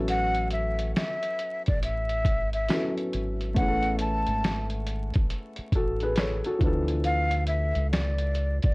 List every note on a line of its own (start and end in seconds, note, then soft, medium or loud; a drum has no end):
0.00 0.92 A1 medium
0.00 2.65 F#3 medium
0.00 2.66 B3 medium
0.00 2.66 C#4 medium
0.00 2.67 E4 medium
0.00 2.68 A4 medium
0.08 0.49 F#5 loud
0.08 closed hi-hat medium
0.35 closed hi-hat soft
0.51 0.92 E5 medium
0.51 closed hi-hat medium
0.79 closed hi-hat soft
0.96 1.63 E5 medium
0.96 snare loud
0.96 closed hi-hat medium
1.23 closed hi-hat soft
1.39 closed hi-hat medium
1.66 2.24 A1 medium
1.66 1.82 D5 medium
1.66 kick medium
1.66 closed hi-hat soft
1.83 2.50 E5 medium
1.83 closed hi-hat medium
2.09 closed hi-hat soft
2.25 2.67 G#1 medium
2.25 kick medium
2.25 closed hi-hat medium
2.53 2.93 E5 medium
2.53 closed hi-hat soft
2.68 3.56 F#3 medium
2.68 3.55 B3 soft
2.68 3.56 C#4 soft
2.68 3.58 E4 soft
2.68 snare loud
2.68 closed hi-hat medium
2.73 3.58 A4 medium
2.98 closed hi-hat soft
3.13 3.54 G#1 medium
3.13 closed hi-hat medium
3.41 closed hi-hat soft
3.54 4.23 A1 medium
3.54 6.56 A3 medium
3.54 6.57 B3 medium
3.54 6.58 C#4 medium
3.54 3.96 F#5 loud
3.54 kick loud
3.54 closed hi-hat medium
3.60 6.59 E4 medium
3.60 3.67 G#4 medium
3.68 5.74 A4 medium
3.83 closed hi-hat soft
3.99 4.67 A5 medium
3.99 closed hi-hat medium
4.27 5.11 G#1 medium
4.27 closed hi-hat soft
4.44 snare loud
4.44 closed hi-hat medium
4.70 closed hi-hat soft
4.87 closed hi-hat medium
5.14 5.30 G#1 medium
5.14 kick loud
5.14 closed hi-hat soft
5.30 closed hi-hat medium
5.56 muted fingered electric bass stroke soft
5.56 closed hi-hat soft
5.72 6.40 A1 medium
5.72 6.01 F#4 medium
5.72 6.01 A4 medium
5.72 kick medium
5.72 closed hi-hat medium
6.00 6.18 G#4 medium
6.00 6.17 B4 medium
6.00 closed hi-hat soft
6.16 6.44 A4 medium
6.16 6.44 C#5 medium
6.16 snare loud
6.16 closed hi-hat medium
6.44 6.87 F#4 medium
6.44 6.64 A4 medium
6.44 closed hi-hat soft
6.59 7.71 D2 medium
6.59 8.74 F3 medium
6.59 8.74 B3 medium
6.59 8.74 D4 medium
6.59 kick loud
6.59 closed hi-hat medium
6.64 8.74 E3 medium
6.64 8.74 A4 medium
6.88 closed hi-hat medium
7.04 7.44 F5 loud
7.04 closed hi-hat medium
7.31 closed hi-hat soft
7.47 7.87 E5 medium
7.47 closed hi-hat medium
7.75 8.58 C#2 medium
7.75 closed hi-hat soft
7.92 8.58 D5 medium
7.92 snare loud
7.92 closed hi-hat medium
8.18 closed hi-hat medium
8.35 closed hi-hat medium
8.62 8.74 B1 medium
8.62 8.74 D5 medium
8.62 kick loud
8.62 closed hi-hat soft